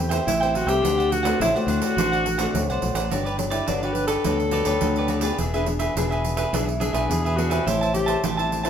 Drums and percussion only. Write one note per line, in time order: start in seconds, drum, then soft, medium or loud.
0.11 pandeiro medium
0.28 pandeiro medium
0.43 pandeiro soft
0.55 pandeiro medium
0.69 pandeiro medium
0.85 pandeiro medium
1.00 pandeiro soft
1.12 pandeiro medium
1.25 pandeiro medium
1.41 pandeiro medium
1.56 pandeiro soft
1.68 pandeiro medium
1.82 pandeiro medium
1.98 pandeiro medium
2.13 pandeiro soft
2.26 pandeiro medium
2.39 pandeiro medium
2.55 pandeiro medium
2.70 pandeiro soft
2.82 pandeiro medium
2.95 pandeiro medium
3.11 pandeiro medium
3.26 pandeiro soft
3.39 pandeiro medium
3.51 pandeiro medium
3.68 pandeiro medium
3.83 pandeiro soft
3.95 pandeiro medium
4.08 pandeiro medium
4.24 pandeiro medium
4.40 pandeiro soft
4.51 pandeiro medium
4.65 pandeiro medium
4.81 pandeiro medium
4.96 pandeiro soft
5.08 pandeiro medium
5.21 pandeiro medium
5.38 pandeiro medium
5.54 pandeiro soft
5.66 pandeiro medium
5.80 pandeiro medium
5.97 pandeiro medium
6.12 pandeiro soft
6.25 pandeiro medium
6.37 pandeiro medium
6.54 pandeiro medium
6.69 pandeiro soft
6.81 pandeiro medium
6.94 pandeiro medium
7.11 pandeiro medium
7.26 pandeiro soft
7.39 pandeiro medium
7.51 pandeiro medium
7.68 pandeiro medium
7.83 pandeiro soft
7.95 pandeiro medium
8.08 pandeiro medium
8.24 pandeiro medium
8.39 pandeiro soft
8.52 pandeiro medium
8.65 pandeiro medium